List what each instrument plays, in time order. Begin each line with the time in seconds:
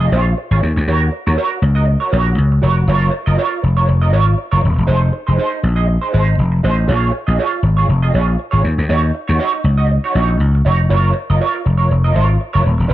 0.00 clean electric guitar F4 G#4 D#5
0.11 slap bass A#1, clean electric guitar F4 G#4 C#5
0.26 muted clean electric guitar stroke
0.37 muted clean electric guitar stroke
0.51 slap bass G#1, clean electric guitar F4 G#4 C#5
0.62 slap bass D#2, muted clean electric guitar stroke
0.76 slap bass D2, muted clean electric guitar stroke
0.88 slap bass D#2, clean electric guitar F#4 A#4 C#5
1.02 muted clean electric guitar stroke
1.11 muted clean electric guitar stroke
1.27 slap bass D#2, clean electric guitar F#4 A#4 C#5
1.37 clean electric guitar F#4 A#4 C#5
1.51 muted clean electric guitar stroke
1.62 slap bass C#2, muted clean electric guitar stroke
1.75 clean electric guitar F#4 A#4 D#5
1.87 muted clean electric guitar stroke
2.00 clean electric guitar F#4 A#4 C#5
2.11 slap bass A#1, clean electric guitar F#4 A#4 C#5
2.27 muted clean electric guitar stroke
2.38 slap bass C#2
2.52 muted clean electric guitar stroke
2.62 slap bass F1, clean electric guitar F#4 A#4 C#5
2.77 muted clean electric guitar stroke
2.88 slap bass F#1, clean electric guitar F4 A#4 C#5
3.13 muted clean electric guitar stroke
3.26 slap bass F#1, clean electric guitar F4 A#4 D#5
3.37 clean electric guitar F4 A#4 C#5
3.51 muted clean electric guitar stroke
3.62 slap bass F1, muted clean electric guitar stroke
3.77 clean electric guitar F4 A#4 C#5
3.88 slap bass F1, muted clean electric guitar stroke
4.02 clean electric guitar F4 A#4 D#5
4.12 slap bass G#1, clean electric guitar F4 A#4 C#5
4.27 muted clean electric guitar stroke
4.38 muted clean electric guitar stroke
4.52 slap bass F#1, clean electric guitar F4 A#4 C#5
4.62 slap bass D#1, muted clean electric guitar stroke
4.76 slap bass E1, muted clean electric guitar stroke
4.87 slap bass F1, clean electric guitar D#4 G#4 C5
5.01 muted clean electric guitar stroke
5.12 muted clean electric guitar stroke
5.27 slap bass F1, clean electric guitar D#4 G#4 C5
5.37 clean electric guitar D#4 G#4 C5
5.52 muted clean electric guitar stroke
5.63 slap bass A#1, muted clean electric guitar stroke
5.76 clean electric guitar D#4 G#4 D#5
5.88 muted clean electric guitar stroke
6.01 clean electric guitar D#4 G#4 C5
6.13 slap bass G#1, clean electric guitar D#4 G#4 C5
6.28 muted clean electric guitar stroke
6.39 slap bass F1
6.52 muted clean electric guitar stroke
6.63 slap bass A1, clean electric guitar D#4 G#4 C5
6.77 muted clean electric guitar stroke
6.87 slap bass A#1, clean electric guitar F4 G#4 C#5
7.13 muted clean electric guitar stroke
7.27 slap bass A#1, clean electric guitar F4 G#4 D#5
7.38 clean electric guitar F4 G#4 C#5
7.52 muted clean electric guitar stroke
7.63 slap bass G#1, muted clean electric guitar stroke
7.77 clean electric guitar F4 G#4 C#5
7.89 slap bass F1, muted clean electric guitar stroke
8.02 clean electric guitar F4 G#4 D#5
8.14 slap bass A#1, clean electric guitar F4 G#4 C#5
8.27 muted clean electric guitar stroke
8.39 muted clean electric guitar stroke
8.51 slap bass G#1, clean electric guitar F4 G#4 C#5
8.63 slap bass D#2, muted clean electric guitar stroke
8.78 slap bass D2, muted clean electric guitar stroke
8.89 slap bass D#2, clean electric guitar D#4 F#4 C#5
9.03 muted clean electric guitar stroke
9.14 muted clean electric guitar stroke
9.28 slap bass D#2, clean electric guitar D#4 F#4 C#5
9.39 clean electric guitar D#4 F#4 C#5
9.53 muted clean electric guitar stroke
9.64 slap bass C#2, muted clean electric guitar stroke
9.78 clean electric guitar D#4 F#4 D#5
9.90 muted clean electric guitar stroke
10.04 clean electric guitar D#4 F#4 C#5
10.15 slap bass A#1, clean electric guitar D#4 F#4 C#5
10.30 muted clean electric guitar stroke
10.40 slap bass C#2
10.55 muted clean electric guitar stroke
10.65 slap bass F1, clean electric guitar D#4 F#4 C#5
10.79 muted clean electric guitar stroke
10.89 slap bass F#1, clean electric guitar F4 A#4 C#5
11.15 muted clean electric guitar stroke
11.30 slap bass F#1, clean electric guitar F4 A#4 D#5
11.40 clean electric guitar F4 A#4 C#5
11.55 muted clean electric guitar stroke
11.65 slap bass F1, muted clean electric guitar stroke
11.77 clean electric guitar F4 A#4 C#5
11.91 slap bass F1, muted clean electric guitar stroke
12.04 clean electric guitar F4 A#4 D#5
12.14 slap bass G#1, clean electric guitar F4 A#4 C#5
12.28 muted clean electric guitar stroke
12.40 muted clean electric guitar stroke
12.53 slap bass F#1, clean electric guitar F4 A#4 C#5
12.64 slap bass D#1, muted clean electric guitar stroke
12.78 slap bass E1, muted clean electric guitar stroke
12.88 slap bass F1, clean electric guitar D#4 G#4 C5